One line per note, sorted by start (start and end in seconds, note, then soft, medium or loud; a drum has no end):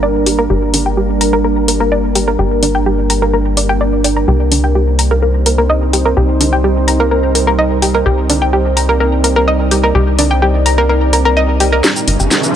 0.00 0.48 G1 medium
0.00 11.80 G3 medium
0.00 4.24 A#3 medium
0.00 4.24 D4 medium
0.00 4.24 A#4 medium
0.00 0.08 D5 medium
0.26 0.32 G4 medium
0.26 open hi-hat medium
0.39 0.44 A#4 loud
0.50 2.37 G1 medium
0.50 0.56 G4 medium
0.74 0.77 D4 medium
0.74 open hi-hat loud
0.86 0.94 G5 medium
0.97 1.03 G4 medium
1.21 1.26 A#5 medium
1.21 open hi-hat medium
1.33 1.38 A#4 loud
1.44 1.53 A#4 medium
1.68 1.71 A#4 medium
1.68 open hi-hat loud
1.80 1.83 A#4 medium
1.92 1.97 D5 medium
2.15 2.21 G4 medium
2.15 open hi-hat medium
2.28 2.33 A#4 medium
2.39 4.26 G1 medium
2.39 2.45 G4 medium
2.63 2.66 D4 medium
2.63 open hi-hat loud
2.75 2.83 G5 medium
2.86 2.92 G4 medium
3.10 3.15 A#5 medium
3.10 open hi-hat medium
3.22 3.27 A#4 medium
3.33 3.42 A#4 medium
3.57 3.63 D5 medium
3.57 open hi-hat loud
3.69 3.74 G5 medium
3.81 3.84 D5 medium
4.04 4.10 D5 medium
4.04 open hi-hat medium
4.17 4.22 A#5 medium
4.28 6.15 C2 medium
4.28 11.80 C4 medium
4.28 11.80 D#4 medium
4.28 4.33 G4 medium
4.28 8.02 C5 medium
4.52 4.55 D4 medium
4.52 open hi-hat medium
4.64 4.72 G5 medium
4.75 4.81 G4 medium
4.99 5.04 A#5 medium
4.99 open hi-hat medium
5.11 5.16 A#4 loud
5.22 5.31 A#4 medium
5.46 5.49 A#4 medium
5.46 open hi-hat loud
5.58 5.61 A#4 medium
5.70 5.75 D#5 medium
5.93 5.99 G4 medium
5.93 open hi-hat medium
6.05 6.11 A#4 medium
6.17 8.04 C2 medium
6.17 6.22 G4 medium
6.40 6.44 D4 medium
6.40 open hi-hat loud
6.53 6.60 G5 medium
6.64 6.70 G4 medium
6.88 6.93 A#5 medium
6.88 open hi-hat medium
7.00 7.05 A#4 loud
7.11 7.20 A#4 medium
7.35 7.38 A#4 medium
7.35 open hi-hat medium
7.47 7.50 A#4 medium
7.59 7.64 D#5 medium
7.82 7.88 G4 medium
7.82 open hi-hat medium
7.95 8.00 A#4 loud
8.06 9.93 C2 medium
8.06 8.11 G4 medium
8.06 11.80 D5 medium
8.29 8.33 D4 medium
8.29 open hi-hat medium
8.42 8.49 G5 medium
8.53 8.59 G4 medium
8.77 8.82 A#5 medium
8.77 open hi-hat medium
8.89 8.94 A#4 loud
9.00 9.09 A#4 medium
9.24 9.27 A#4 medium
9.24 open hi-hat medium
9.36 9.39 A#4 loud
9.48 9.53 D#5 medium
9.71 9.77 G4 medium
9.71 open hi-hat medium
9.84 9.89 A#4 medium
9.95 11.82 C2 medium
9.95 10.00 G4 medium
10.19 10.22 D4 medium
10.19 open hi-hat loud
10.31 10.38 G5 medium
10.42 10.48 G4 medium
10.66 10.71 A#5 medium
10.66 open hi-hat medium
10.78 10.83 A#4 loud
10.89 10.98 A#4 medium
11.13 11.16 A#4 medium
11.13 open hi-hat medium
11.25 11.28 A#4 loud
11.37 11.42 D#5 medium
11.60 11.66 G4 medium
11.60 open hi-hat medium
11.72 11.78 A#4 loud
11.84 12.56 G3 medium
11.84 12.56 A#3 medium
11.84 12.56 D4 medium
11.84 11.89 G4 medium
11.84 12.56 A#4 medium
11.84 snare soft
11.84 riser medium
11.84 shaker medium
11.96 shaker soft
12.07 12.17 G1 medium
12.07 12.11 D4 medium
12.07 open hi-hat loud
12.20 12.28 G1 medium
12.20 12.27 G5 medium
12.20 shaker soft
12.31 12.37 G4 medium
12.31 snare soft
12.31 shaker medium
12.43 shaker soft